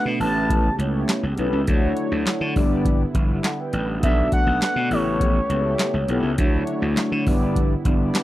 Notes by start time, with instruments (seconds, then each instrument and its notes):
Already playing: analog synth pad D3 A3 B3 F#4, analog polysynth A3 B3 D4 F#4 B4
0.05 slap bass B2
0.20 slap bass A1, analog synth pad C#3 G4, analog polysynth A3 C#4 E4 G4 B4, analog synth lead A5, open hi-hat
0.50 kick, closed hi-hat
0.79 slap bass C#2, analog polysynth A3 C#4 E4 G4 C#5, closed hi-hat
1.09 snare, clap, closed hi-hat
1.23 slap bass C#2
1.38 slap bass B1, analog polysynth A3 C#4 E4 G4 B4, closed hi-hat
1.53 slap bass C#2
1.67 slap bass D2, analog synth pad D3 F#3 E4 C#5, analog polysynth A3 D4 E4 F#4 C#5, kick, closed hi-hat
1.97 closed hi-hat
2.12 slap bass D2
2.26 muted slap bass stroke, snare, clap, closed hi-hat
2.41 slap bass D3
2.55 slap bass G1, analog synth pad G3 B3, analog polysynth A3 D4 E4 G4 D5, kick, open hi-hat
2.62 analog polysynth B3
2.85 kick, closed hi-hat
3.14 slap bass G1, kick, closed hi-hat
3.30 analog polysynth G4 E5
3.44 analog polysynth A4 F#5, snare, clap, closed hi-hat
3.59 analog polysynth B4 G5
3.73 slap bass A1, closed hi-hat
3.88 analog polysynth G4 E5
4.03 slap bass B1, analog synth pad A3 F#4, analog polysynth B3 D4 F#4 A4 D5, analog synth lead E5, kick, closed hi-hat
4.32 analog synth lead F#5, kick, closed hi-hat
4.47 slap bass B1
4.62 analog synth lead F#5, muted slap bass stroke, snare, clap, closed hi-hat
4.76 slap bass B2
4.91 slap bass A1, analog synth pad C#3 G4, analog polysynth B3 E4 G4 A4 C#5, analog synth lead C#5, open hi-hat
5.20 kick, closed hi-hat
5.49 slap bass C#2, analog polysynth B3 E4 G4 A4 E5, closed hi-hat
5.79 snare, clap, closed hi-hat
5.94 slap bass C#2
6.08 slap bass B1, analog polysynth B3 E4 G4 A4 C#5, closed hi-hat
6.23 slap bass C#2
6.38 slap bass D2, analog synth pad D3 F#3 E4 C#5, analog polysynth A3 D4 E4 F#4 C#5, kick, closed hi-hat
6.67 closed hi-hat
6.82 slap bass D2
6.97 muted slap bass stroke, snare, clap, closed hi-hat
7.12 slap bass D3
7.26 slap bass G1, analog synth pad D3 G3 B3, analog polysynth B3 D4 E4 G4 D5, kick, open hi-hat
7.56 kick, closed hi-hat
7.85 slap bass G1, analog polysynth B3 D4 E4 G4 D5, kick, closed hi-hat
8.15 snare, clap, closed hi-hat